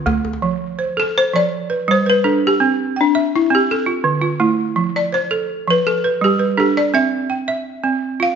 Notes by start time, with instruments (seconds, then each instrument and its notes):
0.06 balafon A3, djembe slap, djembe bass
0.25 djembe slap, djembe tone
0.33 djembe slap
0.42 balafon F3
0.79 balafon C5
0.97 balafon A4
1.18 balafon C5
1.33 balafon F3 D5
1.70 balafon B4
1.88 balafon G3 C5
2.06 balafon B4
2.24 balafon D4 A4
2.47 balafon G4
2.60 balafon C4
2.96 balafon G5
3.01 balafon D4
3.15 balafon E5
3.36 balafon E4
3.50 balafon C4
3.55 balafon G4
3.71 balafon A4
3.86 balafon F4
4.04 balafon D3
4.22 balafon F4
4.40 balafon A3 E4
4.76 balafon F3
4.96 balafon D5
5.12 balafon C5
5.31 balafon A4
5.68 balafon F3 B4
5.87 balafon A4
6.04 balafon B4
6.21 balafon G3 G4
6.39 balafon B4
6.57 balafon D4 G4 A4
6.77 balafon D5
6.94 balafon C4 E5
7.30 balafon G5
7.48 balafon E5
7.84 balafon C4
8.20 balafon F4 F5